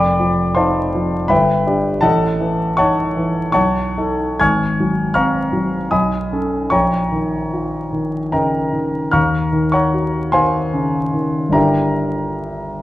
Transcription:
0.00 1.26 F1 medium
0.00 0.53 D5 medium
0.00 0.53 G5 medium
0.00 0.53 B5 medium
0.00 0.56 D6 medium
0.20 0.79 F3 soft
0.55 1.15 D#4 soft
0.55 1.26 C5 medium
0.55 1.26 F5 medium
0.55 1.26 A5 soft
0.55 1.29 C6 medium
0.95 1.30 F3 soft
1.28 2.02 G1 medium
1.28 2.00 B4 medium
1.28 2.00 E5 medium
1.28 2.00 G5 medium
1.28 2.03 B5 medium
1.67 2.00 D4 soft
1.67 2.01 G4 soft
2.01 3.51 A1 medium
2.01 2.74 A4 medium
2.01 2.74 D#5 medium
2.01 2.74 F#5 medium
2.01 2.77 A5 medium
2.40 3.01 E3 soft
2.77 3.40 D#4 soft
2.77 3.51 C#5 medium
2.77 3.51 F#5 medium
2.77 3.51 A5 medium
2.77 3.51 C#6 medium
3.16 3.56 E3 soft
3.52 4.37 B1 medium
3.52 4.36 C#5 medium
3.52 4.36 F#5 medium
3.52 4.36 A5 medium
3.52 4.39 C#6 medium
3.98 4.37 D#4 soft
3.98 4.37 A4 soft
4.40 5.90 G#1 soft
4.40 5.13 G#5 medium
4.40 5.13 C#6 medium
4.40 5.13 F6 medium
4.40 5.16 G#6 medium
4.80 5.40 F#3 soft
5.14 5.77 C4 soft
5.14 5.89 F5 medium
5.14 5.89 A#5 medium
5.14 5.89 C#6 medium
5.14 5.92 F6 medium
5.53 5.93 F#3 soft
5.91 6.70 B1 soft
5.91 6.68 D#5 soft
5.91 6.68 G#5 soft
5.91 6.68 B5 soft
5.91 6.72 D#6 medium
6.33 6.69 C#4 soft
6.33 6.69 A4 soft
6.70 9.11 A#1 soft
6.70 8.31 C#5 medium
6.70 8.31 G5 medium
6.70 8.31 A#5 medium
6.70 8.34 C#6 medium
7.12 7.79 D#3 soft
7.53 8.19 F4 soft
7.93 8.58 D#3 soft
8.32 8.74 C#3 soft
8.32 9.10 A#4 medium
8.32 9.11 D#5 soft
8.32 9.10 G5 soft
8.32 9.11 A#5 medium
8.72 9.14 D#3 soft
9.11 11.49 D#2 soft
9.11 9.71 F5 medium
9.11 9.71 A#5 medium
9.11 9.71 C#6 medium
9.11 9.74 F6 medium
9.53 10.18 D#3 soft
9.72 10.30 C#5 medium
9.72 10.30 F#5 medium
9.72 10.30 A#5 medium
9.72 10.33 C#6 medium
9.94 10.57 F#4 soft
10.32 10.97 D#3 soft
10.32 11.50 C5 medium
10.32 11.50 F5 medium
10.32 11.50 G#5 medium
10.32 11.53 C6 medium
10.73 11.13 C#3 soft
11.14 11.55 D#3 soft
11.49 12.82 G1 soft
11.49 12.82 D3 soft
11.49 12.82 D4 soft
11.49 12.82 E4 soft
11.49 12.82 A#5 medium
11.53 12.82 G4 soft
11.53 12.82 A#4 medium
11.53 12.82 E5 soft
11.53 12.82 G5 soft

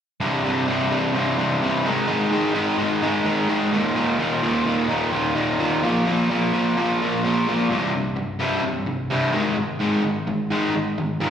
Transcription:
0.20 0.42 C2 medium
0.20 0.43 G2 medium
0.20 0.43 C3 medium
0.44 0.66 C2 medium
0.44 0.67 G2 medium
0.44 0.67 C3 medium
0.67 0.90 C2 medium
0.67 0.90 G2 medium
0.67 0.91 C3 medium
0.91 1.13 C2 medium
0.91 1.13 G2 medium
0.91 1.14 C3 medium
1.14 1.37 C2 medium
1.14 1.37 G2 medium
1.14 1.38 C3 medium
1.38 1.60 C2 medium
1.38 1.61 G2 medium
1.38 1.61 C3 medium
1.61 1.84 C2 medium
1.61 1.84 G2 medium
1.61 1.84 C3 medium
1.84 2.06 G#2 medium
1.84 2.07 D#3 medium
1.84 2.07 G#3 loud
2.07 2.30 G#2 medium
2.07 2.31 D#3 medium
2.07 2.31 G#3 medium
2.31 2.53 G#2 medium
2.31 2.53 D#3 medium
2.31 2.54 G#3 medium
2.54 2.77 G#2 medium
2.54 2.77 D#3 medium
2.54 2.78 G#3 medium
2.78 3.01 G#2 medium
2.78 3.01 D#3 medium
2.78 3.02 G#3 medium
3.02 3.24 G#2 medium
3.02 3.24 D#3 medium
3.02 3.25 G#3 medium
3.25 3.48 G#2 medium
3.25 3.48 D#3 medium
3.25 3.49 G#3 medium
3.49 3.71 G#2 medium
3.49 3.71 D#3 medium
3.49 3.72 G#3 loud
3.72 3.94 D#2 medium
3.72 3.94 A#2 medium
3.72 3.95 D#3 loud
3.95 4.18 D#2 medium
3.95 4.18 A#2 medium
3.95 4.19 D#3 medium
4.19 4.41 D#2 medium
4.19 4.42 A#2 medium
4.19 4.42 D#3 medium
4.42 4.64 D#2 medium
4.42 4.65 A#2 medium
4.42 4.65 D#3 loud
4.65 4.87 D#2 medium
4.65 4.88 A#2 medium
4.65 4.88 D#3 medium
4.89 5.11 D#2 medium
4.89 5.11 A#2 medium
4.89 5.11 D#3 medium
5.12 5.34 D#2 medium
5.12 5.34 A#2 medium
5.12 5.35 D#3 medium
5.35 5.58 D#2 medium
5.35 5.58 A#2 loud
5.35 5.58 D#3 medium
5.59 5.81 D#2 medium
5.59 5.82 A#2 medium
5.59 5.82 D#3 medium
5.83 6.05 A#2 medium
5.83 6.06 F3 medium
5.83 6.06 A#3 medium
6.06 6.29 A#2 medium
6.06 6.29 F3 medium
6.06 6.29 A#3 medium
6.30 6.52 A#2 medium
6.30 6.52 F3 medium
6.30 6.53 A#3 medium
6.53 6.76 A#2 medium
6.53 6.76 F3 medium
6.53 6.76 A#3 medium
6.77 7.00 A#2 medium
6.77 7.00 F3 medium
6.77 7.01 A#3 medium
7.01 7.23 A#2 medium
7.01 7.23 F3 medium
7.01 7.23 A#3 medium
7.24 7.46 A#2 medium
7.24 7.46 F3 medium
7.24 7.47 A#3 loud
7.47 7.69 A#2 medium
7.47 7.69 F3 medium
7.47 7.70 A#3 medium
7.70 7.92 C2 medium
7.70 7.92 G2 medium
7.70 7.92 C3 medium
7.94 8.15 C2 medium
7.94 8.15 G2 medium
8.16 8.37 C2 medium
8.16 8.38 G2 medium
8.39 8.62 C2 medium
8.39 8.62 G2 medium
8.39 8.62 C3 loud
8.64 8.85 C2 medium
8.64 8.85 G2 medium
8.86 9.08 C2 medium
8.86 9.08 G2 medium
9.11 9.33 C2 medium
9.11 9.33 G2 medium
9.11 9.33 C3 medium
9.33 9.55 G#2 medium
9.33 9.56 D#3 medium
9.33 9.56 G#3 medium
9.57 9.78 G#2 medium
9.57 9.78 D#3 medium
9.80 10.02 G#2 medium
9.80 10.03 D#3 medium
9.80 10.03 G#3 medium
10.04 10.25 G#2 medium
10.04 10.25 D#3 medium
10.27 10.48 G#2 medium
10.27 10.49 D#3 medium
10.51 10.73 G#2 medium
10.51 10.73 D#3 medium
10.51 10.73 G#3 medium
10.75 10.95 G#2 medium
10.75 10.96 D#3 medium
10.98 11.19 G#2 medium
10.98 11.19 D#3 medium
11.21 11.30 D#2 medium
11.21 11.30 A#2 medium
11.21 11.30 D#3 medium

